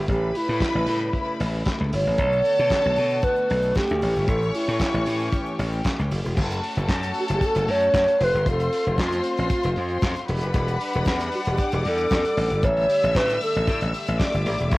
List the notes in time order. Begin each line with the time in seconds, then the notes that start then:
0.08 A1 C#3 G3 A3 E4 G4 B4 B5, kick, closed hi-hat
0.35 E4, open hi-hat
0.49 A2
0.61 kick, snare, clap, closed hi-hat
0.75 A1
0.87 A2, open hi-hat
1.13 kick, closed hi-hat
1.40 A1, open hi-hat
1.65 kick, snare, clap, closed hi-hat
1.80 C#2
1.92 G1 C#5, open hi-hat
2.06 A1
2.18 B1 D3 B3 F#4 A4 A5, kick, closed hi-hat, shaker
2.32 shaker
2.44 open hi-hat, shaker
2.58 B2, shaker
2.70 kick, snare, clap, closed hi-hat, shaker
2.83 B1, shaker
2.96 B2, open hi-hat, shaker
3.10 shaker
3.22 B4, kick, closed hi-hat, shaker
3.36 shaker
3.50 B1, open hi-hat
3.62 shaker
3.75 G4, kick, snare, clap, closed hi-hat, shaker
3.89 D2, shaker
4.00 A1 E3 C#4 G4 C#5 C#6, open hi-hat, shaker
4.16 G1, shaker
4.28 A1 A4, kick, closed hi-hat, shaker
4.42 shaker
4.55 E4, open hi-hat, shaker
4.68 A2, shaker
4.80 kick, snare, clap, closed hi-hat, shaker
4.94 A1, shaker
5.06 A2, open hi-hat, shaker
5.20 shaker
5.32 kick, closed hi-hat, shaker
5.46 shaker
5.59 A1, open hi-hat, shaker
5.72 shaker
5.84 kick, snare, clap, closed hi-hat, shaker
5.99 C#2, shaker
6.11 F#1, open hi-hat, shaker
6.25 E1, shaker
6.36 F#1 A3 C#4 F#4 A4 A5, kick, crash, shaker
6.50 closed hi-hat, shaker
6.63 open hi-hat
6.75 F#1, closed hi-hat, shaker
6.89 F#2, kick, snare, clap, shaker
7.03 closed hi-hat, shaker
7.14 open hi-hat
7.20 F#4
7.28 F#1, closed hi-hat, shaker
7.33 G4
7.41 kick, closed hi-hat, shaker
7.46 A4
7.55 F#1, closed hi-hat, shaker
7.68 F#2 C#5, open hi-hat
7.80 closed hi-hat, shaker
7.94 F#2, kick, snare, clap, shaker
8.08 closed hi-hat, shaker
8.20 F1 C4 F4 B4 C5 C6, open hi-hat
8.33 G1, closed hi-hat, shaker
8.46 F1 A4, kick, closed hi-hat, shaker
8.60 closed hi-hat, shaker
8.72 open hi-hat
8.85 F1, closed hi-hat, shaker
8.97 F2 F4, kick, snare, clap, shaker
9.11 closed hi-hat, shaker
9.23 open hi-hat
9.37 A1, closed hi-hat, shaker
9.49 kick, closed hi-hat, shaker
9.63 F1, closed hi-hat, shaker
9.76 F2, open hi-hat
9.89 closed hi-hat, shaker
10.02 F2, kick, snare, clap, shaker
10.16 closed hi-hat, shaker
10.28 E1 G3 D4 B4 F#5 B5, open hi-hat
10.41 F#1, closed hi-hat, shaker
10.54 E1, kick, closed hi-hat, shaker
10.68 closed hi-hat, shaker
10.81 open hi-hat
10.93 E1, closed hi-hat, shaker
11.05 E2, kick, snare, clap, shaker
11.19 closed hi-hat, shaker
11.32 F#4, open hi-hat
11.45 E1 G4, closed hi-hat, shaker
11.57 D5 D6, kick, closed hi-hat, shaker
11.71 E1, closed hi-hat, shaker
11.85 E2 A4, open hi-hat
11.98 closed hi-hat, shaker
12.10 E2, kick, snare, clap, shaker
12.24 closed hi-hat, shaker
12.37 A1, open hi-hat
12.50 G1, closed hi-hat, shaker
12.62 A1 D3 A3 C#5 E5 E6, kick, closed hi-hat, shaker
12.77 closed hi-hat, shaker
12.89 open hi-hat, shaker
13.02 A1, closed hi-hat, shaker
13.15 A2 B4, kick, snare, clap, shaker
13.29 closed hi-hat, shaker
13.41 A4, open hi-hat, shaker
13.55 A1, closed hi-hat, shaker
13.67 A2, kick, closed hi-hat, shaker
13.81 A1, closed hi-hat, shaker
13.94 open hi-hat, shaker
14.07 A1, closed hi-hat, shaker
14.19 D5 D6, kick, snare, clap, shaker
14.34 G1, closed hi-hat, shaker
14.46 A1, open hi-hat, shaker
14.59 E1, closed hi-hat, shaker
14.72 F#1 C#3 F#3 C#5 C#6, kick, closed hi-hat, shaker